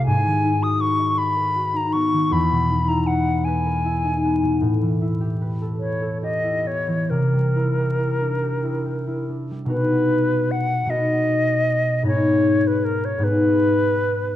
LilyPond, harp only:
\new Staff \with { instrumentName = "Harp" } { \time 6/8 \key gis \phrygian \tempo 4. = 51 gis,16 dis16 dis'16 fis'16 b'16 dis''16 b'16 ais'16 fis'16 dis'16 b16 dis16 | e,16 b,16 dis'16 e'16 b'16 dis''16 b'16 ais'16 e'16 dis'16 b16 b,16 | a,16 e16 e'16 g'16 b'16 a'16 b'16 a'16 g'16 e'16 b16 e16 | c16 g16 e'16 g'16 e'16 d'16 g'16 e'16 g'16 e'16 d'16 g16 |
<b, b dis' fis' ais'>4. <b, b dis' fis' ais'>4. | <gis, b dis' gis' ais'>4. <gis, b dis' gis' ais'>4. | }